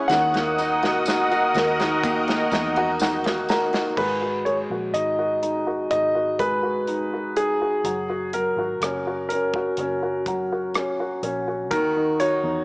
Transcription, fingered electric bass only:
0.09 D#2
1.55 D#2
2.52 E2
3.97 G#1
4.70 A#1
4.93 G#1
5.90 G#1
7.35 C#2
7.84 F#1
8.56 G#1
8.80 F#1
9.78 F#1
11.23 A#1
11.71 D#2
12.43 E2

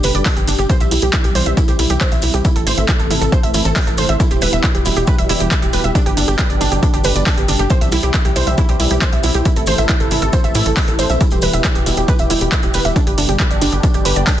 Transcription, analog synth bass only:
0.04 G1
0.15 G1
0.37 G1
0.48 G1
0.59 G1
0.81 C2
0.92 C2
1.02 C2
1.24 C2
1.35 C2
1.46 C2
1.68 C2
1.79 C2
1.90 C2
2.12 C2
2.23 C2
2.34 C2
2.56 A1
2.67 A1
2.78 A1
2.99 A1
3.11 A1
3.21 A1
3.43 A1
3.54 A1
3.65 A1
3.87 A1
3.98 A1
4.09 A1
4.31 E1
4.42 E1
4.53 E1
4.75 E1
4.86 E1
4.97 E1
5.19 E1
5.29 E1
5.40 E1
5.62 E1
5.73 E1
5.84 E1
6.06 G1
6.17 G1
6.28 G1
6.50 G1
6.61 G1
6.72 G1
6.94 G1
7.05 G1
7.16 G1
7.37 G1
7.48 G1
7.59 G1
7.81 C2
7.92 C2
8.03 C2
8.25 C2
8.36 C2
8.47 C2
8.69 C2
8.80 C2
8.91 C2
9.13 C2
9.24 C2
9.35 C2
9.57 A1
9.67 A1
9.78 A1
10.00 A1
10.11 A1
10.22 A1
10.44 A1
10.55 A2
10.66 A1
10.88 A1
10.99 A1
11.10 B1
11.32 E1
11.42 E1
11.53 E1
11.75 E1
11.86 E1
11.97 E1
12.19 E1
12.30 E1
12.41 E1
12.63 E1
12.74 E1
12.85 E1
13.07 G1
13.18 G1
13.29 G1
13.51 G1
13.62 G1
13.72 G1
13.94 G1
14.05 G1
14.16 G1

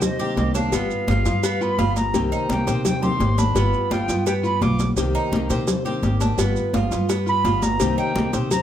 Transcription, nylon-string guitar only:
0.02 muted nylon-string guitar stroke
0.19 D#3 A#3 C4 G4
0.37 D#3 A#3 C4 G4
0.73 G3 B3 F4
1.08 G3 B3 F4
1.25 B3 F4
1.44 muted nylon-string guitar stroke
1.61 B3 F4
1.78 G3 B3 F4
2.14 C3 D#3 A#3 C4 G4
2.49 D#3 A#3 C4 G4
2.67 D#3 A#3 C4 G4
2.85 muted nylon-string guitar stroke
3.02 D#3 A#3 C4 G4
3.20 D#3 A#3 C4 G4
3.55 G3 B3 F4
3.91 G3 B3 F4
4.08 B3 F4
4.26 muted nylon-string guitar stroke
4.43 B3 F4
4.61 G3 B3 F4
4.96 C3 D#3 A#3 C4 G4
5.32 D#3 A#3 C4 G4
5.50 D#3 A#3 C4 G4
5.68 muted nylon-string guitar stroke
5.85 D#3 A#3 C4 G4
6.02 D#3 A#3 C4 G4
6.38 G3 B3 F4
6.73 G3 B3 F4
6.91 B3 F4
7.09 muted nylon-string guitar stroke
7.26 B3 F4
7.44 G3 B3 F4
7.80 C3 D#3 A#3 C4 G4
8.15 D#3 A#3 C4 G4
8.33 D#3 A#3 C4 G4
8.51 muted nylon-string guitar stroke

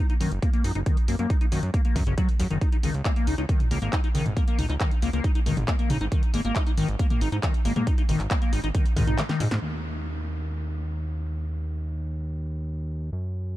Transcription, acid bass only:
0.10 D#4
0.21 D#3
0.42 A#3
0.53 A#3
0.64 D#4
0.75 D#4
0.86 D#3
1.08 A#3
1.19 A#3
1.30 D#4
1.41 D#4
1.52 D#3
1.74 A#3
1.85 A#3
1.96 D#3
2.07 C#3
2.18 F#3
2.40 D#2
2.51 D#3
2.61 D#4
2.72 D#4
2.83 D#3
3.05 A#3
3.16 A#3
3.27 D#4
3.38 D#4
3.49 D#3
3.71 A#3
3.82 A#3
3.93 D#4
4.04 D#4
4.15 D#3
4.37 A#3
4.48 A#3
4.59 D#4
4.70 D#4
4.80 D#3
5.02 A#3
5.13 A#3
5.24 D#4
5.35 D#4
5.46 D#3
5.68 A#3
5.79 A#3
5.90 D#4
6.01 D#4
6.12 D#3
6.34 A#3
6.45 A#3
6.67 D#4
6.78 D#3
6.99 A#3
7.10 A#3
7.21 D#4
7.32 D#4
7.43 D#3
7.65 A#3
7.76 A#3
7.87 D#4
7.98 D#4
8.09 D#3
8.31 A#3
8.42 A#3
8.53 D#4
8.64 D#4
8.74 D#3
8.96 D#3
9.07 D#4
9.18 D#3
9.29 D#3
9.40 A#2
9.51 A#2

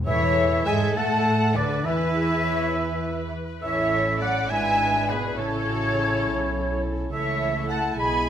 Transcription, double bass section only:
0.06 E2
0.67 G#2
0.97 A2
1.56 D2
1.85 E2
3.62 A1
4.50 G#1
5.37 A1
6.25 B1
7.12 C#2
7.99 B1

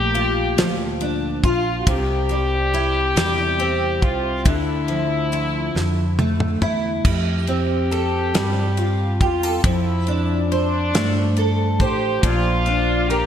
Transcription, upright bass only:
Already playing: A#1
0.57 D2
1.44 A#1
1.87 C2
3.16 E2
4.02 C2
4.46 D2
5.75 F2
6.62 E2
7.05 F2
8.34 G2
9.21 E2
9.64 F2
10.94 G2
11.80 A1
12.23 A#1

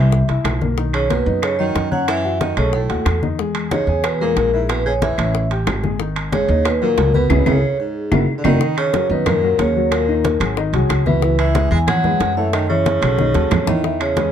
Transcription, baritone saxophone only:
Already playing: E3
0.94 C#3
1.10 B2
1.42 C#3
1.59 D#3
1.91 F#3
2.08 E3
2.41 D#3
2.57 C#3
2.74 A2
3.72 C#3
4.05 B2
4.21 A#2
4.54 G#2
4.70 B2
4.86 C#3
5.02 E3
6.33 C#3
6.65 B2
6.82 A#2
7.15 B2
7.47 C#3
7.80 G#2
8.38 D3
8.44 D#3
8.77 C#3
9.10 B2
9.26 A#2
9.59 C#3
9.93 A#2
11.06 B2
11.38 E3
11.71 G#3
11.87 F#3
12.37 E3
12.53 D#3
12.69 C#3
13.68 D#3
14.01 C#3

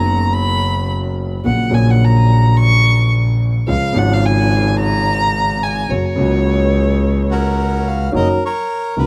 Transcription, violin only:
Already playing: A#5
0.33 B5
1.45 F#5
1.74 G#5
1.90 F#5
2.05 A#5
2.60 C#6
3.68 F5
3.98 F#5
4.13 F5
4.25 G#5
4.79 A#5
5.63 G#5
5.90 C#5

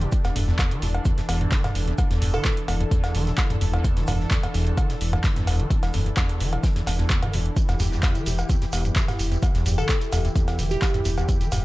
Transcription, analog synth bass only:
0.25 E1
0.36 E1
0.82 E1
1.29 E1
1.75 E1
2.11 E1
2.22 E1
2.68 E1
3.15 E1
3.61 E1
3.97 E1
4.08 E1
4.54 E1
5.01 E1
5.47 E1
5.83 E1
5.94 E1
6.40 E1
6.87 E1
7.33 E1
7.69 E1
7.80 E1
8.26 E1
8.73 E1
9.19 E1
9.55 E1
9.66 E1
10.12 E1
10.59 E1
11.06 E1
11.41 E1
11.52 E1

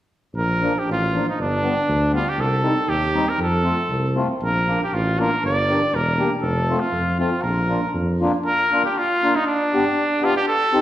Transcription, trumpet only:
0.37 A#4
0.79 G4
0.92 F4
1.30 D#4
1.41 D4
2.15 F4
2.29 G4
2.40 A4
2.89 G4
3.29 A#4
3.42 A4
4.43 A#4
4.84 G4
4.94 F4
5.20 A#4
5.46 D5
5.95 A#4
6.42 A4
6.80 F4
7.20 F4
7.42 A#4
8.46 A#4
8.85 G4
8.98 F4
9.36 D#4
9.47 D4
10.25 F4
10.37 G4
10.48 A4

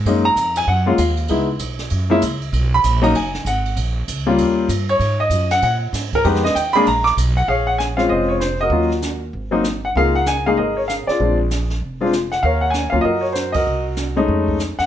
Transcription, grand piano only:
0.06 G#3 A#3 C#4 D#4
0.25 A#5
0.57 G#5
0.68 F#5
0.86 G#3 A#3 C#4 F4
0.99 F5
1.29 G#3 B3 D#4 E4
2.10 G#3 A#3 C#4 E4
2.74 B5
3.02 F#3 A#3 C#4 D#4 A#5
3.16 G#5
3.47 F#5
4.26 G3 A#3 C#4 F4
4.89 C#5
5.20 D#5
5.51 F#5
5.63 F#5
6.15 A#4
6.24 G#3 B3 D#4 G4 B4
6.44 D#5
6.55 G5
6.73 G#3 A#3 D4 G#4 B5
6.88 A#5
7.04 D6
7.37 F#5
7.48 G#4 C#5 F5
7.67 F#5
7.78 G#5
7.97 G#3 C4 C#4 F4 F5
8.09 G#4 C5 D#5
8.29 C#5
8.40 C5
8.61 F#4 A#4 D#5
8.71 F#3 A#3 C#4 F4
9.51 F#3 A#3 C4 D#4
9.85 F#5
9.96 G#3 A#3 D#4 F4 G#4 A#4 F5
10.15 F#5
10.27 G#5
10.46 G#3 A#3 D#4 G#4 F5
10.57 G#4 A#4 D#5
10.77 C#5
10.88 F5
11.07 F4 G#4 D5
11.20 G#3 C4 D4 F4
12.01 G#3 C4 D4 F4
12.32 F#5
12.43 A#4 C#5 F5
12.61 F#5
12.70 G#5
12.90 F#3 A#3 C#4 F4 F5
13.01 F#4 A#4 D#5
13.21 C#5
13.32 C5
13.52 F#4 A#4 D#5
14.16 G#3 A3 C#4 D#4
14.79 F#5

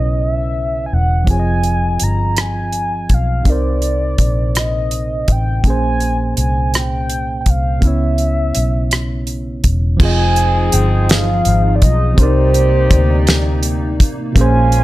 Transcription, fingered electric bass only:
Already playing: B1
0.93 E1
1.28 F1
2.02 G1
3.11 B1
3.46 C2
4.20 A#1
5.29 A1
5.65 A#1
6.38 C2
7.47 C2
7.83 C#2
8.57 B1
9.65 E1
10.00 F1
10.74 G1
11.47 G#1
11.83 B1
12.19 C2
12.92 D2
14.01 A1
14.37 A#1

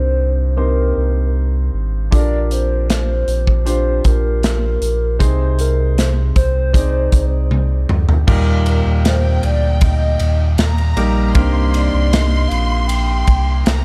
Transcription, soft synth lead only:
Already playing: C5
0.57 A#4
2.14 D5
2.52 C5
2.92 C5
3.68 C5
4.07 A#4
4.44 A#4
5.20 C5
5.60 A#4
5.98 C5
6.36 C5
8.67 A#4
9.07 C5
9.45 D5
9.83 D#5
11.75 D5
12.12 D#5
12.48 F5
12.88 G5

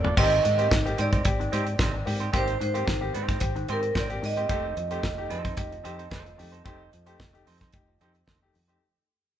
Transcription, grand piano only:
0.17 A#3 C4 G4
0.44 G#2 D#3
0.58 A#3 C4 G4
0.71 G#2 D#3
0.85 A#3 C4 G4
0.98 C4 G4
1.25 C4 G4
1.40 G#2 D#3
1.52 C4 G4
1.79 C4 G4
1.94 G#2 D#3
2.06 A#3 C4 G4
2.33 A#3 C4 G4
2.60 G#2 D#3
2.74 A#3 C4 G4
2.86 G#2 D#3
3.01 A#3 C4 G4
3.40 C4 G4
3.55 G#2 D#3
3.68 C4 G4
4.09 A#3 C4 G4
4.22 G#2 D#3
4.37 A#3 C4 G4
4.49 A3 D#4 G4
4.77 F3
4.91 A3 D#4 G4
5.03 F3
5.18 A3 D#4 G4
5.31 D#4 G4
5.57 D#4 G4
5.72 F3
5.84 D#4 G4
6.11 D#4 G4
6.26 F3
6.38 A3 D#4 G4
6.65 A3 D#4 G4
6.92 F3
7.06 A3 D#4 G4
7.19 F3
7.33 A3 D#4 G4
7.46 D#4 G4
7.73 D#4 G4
7.88 F3
8.01 D#4 G4
8.42 A3 D#4 G4
8.55 F3
8.68 A3 D#4 G4

